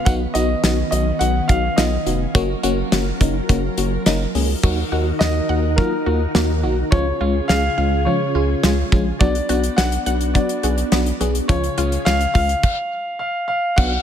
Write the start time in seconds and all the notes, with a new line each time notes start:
Already playing: B3
0.05 B1 D#3 B3 C#4 D#4 F#4 F#5, kick, closed hi-hat
0.34 B1 B3 D#4 F#4 D#5, closed hi-hat
0.63 B1 B3 D#4 F#4, snare, closed hi-hat
0.91 B1 B3 D#4 F#4 D#5, closed hi-hat
1.19 B1 B3 D#4 F#4 F#5, closed hi-hat
1.48 B1 B3 D#4 F#4 F5, kick, closed hi-hat
1.76 B1 B3 D#4 F4 D#5, snare, closed hi-hat
2.06 F1 B3 D#4 F#4, closed hi-hat
2.35 F#1 F#3 A#3 C#4 F4 F#4 A#4, kick, closed hi-hat
2.63 F#1 A#3 C#4 F#4, closed hi-hat
2.92 F#1 A#3 C#4 F#4, snare, closed hi-hat
3.21 F#1 A#3 C#4 D#4, kick, closed hi-hat
3.49 F#1 A#3 C#4 F#4, kick, closed hi-hat
3.78 F#1 A#3 C#4 F#4, closed hi-hat
4.06 F#1 A#3 C#4 D#4, snare, closed hi-hat
4.35 C#2 A#3 C#4 G#4, open hi-hat
4.63 D#2 D#3 F#3 A#3 D#4 F#4 A#4, kick, crash
4.92 D#2 A#3 D#4 F#4
5.19 D#2 A#3 D#4 F#4 D#5 F#5, snare
5.49 D#2 A#3 D#4 F#4 F#5
5.76 F#3 A#3 D#4 F4 A#4, kick
6.06 D#2 A#3 D#4 F4 F#4
6.35 D#2 A#3 D#4 F#4, snare
6.63 B1 F#3 A#3 D#4 F#4
6.91 C#2 C#3 F3 G#3 C#4 F4 G#4 C#5, kick
7.21 C#2 G#3 C#4 F4
7.48 C#2 G#3 C#4 G#4 F5, snare
7.78 C#2 G#3 C#4 F4 F5
8.05 F3 G#3 C#4 F4 C#5
8.35 C#2 G#3 C#4 F4 G#4
8.63 C#2 G#3 C#4 F4, snare
8.92 A#1 F3 G#3 C#4 F4, kick
9.19 B1 F#3 B3 D4 F#4 D5, kick, closed hi-hat
9.35 closed hi-hat
9.49 B1 B3 D4 F#4, closed hi-hat
9.64 closed hi-hat
9.77 B1 B3 D4 F#4 F#5, snare, closed hi-hat
9.92 closed hi-hat
10.06 B1 B3 D4 F#4 F#5, closed hi-hat
10.21 closed hi-hat
10.34 F#3 B3 D4 F#4 D5, kick, closed hi-hat
10.49 closed hi-hat
10.63 B1 B3 D4 F#4 G#4, closed hi-hat
10.78 closed hi-hat
10.92 B1 B3 D4 F#4, snare, closed hi-hat
11.06 closed hi-hat
11.21 B1 F#3 B3 D4 G#4, closed hi-hat
11.35 closed hi-hat
11.48 C#2 C#3 F3 G#3 C#4 F4 G#4 C#5, kick, closed hi-hat
11.64 closed hi-hat
11.78 C#2 G#3 C#4 F4, closed hi-hat
11.92 closed hi-hat
12.05 C#2 G#3 C#4 F4 F5, snare, closed hi-hat
12.21 closed hi-hat
12.34 C#2 G#3 C#4 F4 F5, kick, open hi-hat
12.49 closed hi-hat
12.63 kick, crash
13.19 F5
13.48 F5
13.76 B1 B3 D4 F#4 F#5, kick, crash